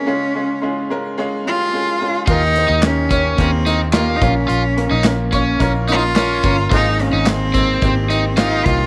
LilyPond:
<<
  \new Staff \with { instrumentName = "Overdriven electric guitar" } { \time 4/4 \key bes \dorian \tempo 4 = 108 r1 | f'16 r8 ees'16 r8 des'8. r16 ees'16 r16 f'8. r16 | f'16 r8 ees'16 r8 des'8. r16 ees'16 r16 des'8. r16 | f'16 r8 ees'16 r8 c'8. r16 ees'16 r16 f'8. r16 | }
  \new Staff \with { instrumentName = "Upright piano" } { \time 4/4 \key bes \dorian <aes des' f' aes'>8 <aes des' f' aes'>8 <aes des' f' aes'>8 <aes des' f' bes'>8 <aes des' f' aes'>8 <aes des' f' g'>8 <aes des' f' aes'>8 <aes des' f' aes'>8 | <bes ees' g' bes'>8 <bes ees' g' c''>8 <bes ees' g' bes'>8 <bes ees' g' des''>8 <bes ees' g' bes'>8 <bes ees' g' bes'>8 <bes ees' g' bes'>8 <bes des' f' bes'>8~ | <bes des' f' bes'>8 <bes des' f' bes'>8 <bes des' f' bes'>8 <bes des' f' des''>8 <bes des' f' bes'>8 <bes des' f' bes'>8 <bes des' f' bes'>8 <bes des' f' bes'>8 | <bes c' ees' aes'>8 <bes c' ees' f'>8 <bes c' ees' aes'>8 <bes c' ees' aes'>8 <bes c' ees' g'>8 <bes c' ees' g'>8 <bes c' ees' g'>8 <bes c' ees' g'>8 | }
  \new Staff \with { instrumentName = "Upright piano" } { \clef bass \time 4/4 \key bes \dorian des4. r2 r8 | ees4. r2 bes,8~ | bes,4 r2. | aes,4. r2 r8 | }
  \new Staff \with { instrumentName = "Cello" } { \time 4/4 \key bes \dorian des'4. r4 f'4. | ees'4 des'4 c'4 bes16. ees'32 des'8~ | des'4. r4 f'4. | ees'8 des'8 c'4 c'4 ees'8 f'8 | }
  \new Staff \with { instrumentName = "Fingered electric bass" } { \clef bass \time 4/4 \key bes \dorian r1 | ees,8. ees,4~ ees,16 ees,4. bes,,8 | bes,,8. bes,,4~ bes,,16 bes,,4. g,,8 | aes,,8. aes,,4~ aes,,16 aes,,4. c,8 | }
  \new DrumStaff \with { instrumentName = "Drums" } \drummode { \time 4/4 r4 r4 r4 r4 | <hh bd>8 hh8 <hc hh sn>8 <hh bd>8 <hh bd>8 <hh sn>8 <hc hh sn>8 <hh bd>8 | hh8 hh8 <hc hh sn>8 <hh bd>8 <hh bd>8 hh8 <hc hh sn>8 <hh bd>8 | <hh bd>8 hh8 <hc hh sn>8 <hh bd>8 <hh bd>8 hh8 <hc hh sn>8 <hh bd>8 | }
>>